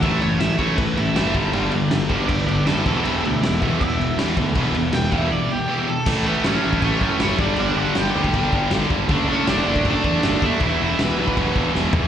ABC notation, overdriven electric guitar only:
X:1
M:4/4
L:1/8
Q:1/4=159
K:A
V:1 name="Overdriven electric guitar"
e c e c B E2 z | z3 [Bd] [Bd] [Bd] [EA] [=CA] | [=CA] [G,E] [G,E] [G,E] E2 z2 | z2 =g e d =G2 A |
z [B,B] [Cc]2 [Cc]2 [Cc] [Dd] | [Dd] [Ff] [=G=g]4 z2 | z [Cc] [Dd]2 [Dd]3 [Ee] | [Ee] [Ee] [Bb]4 z2 |]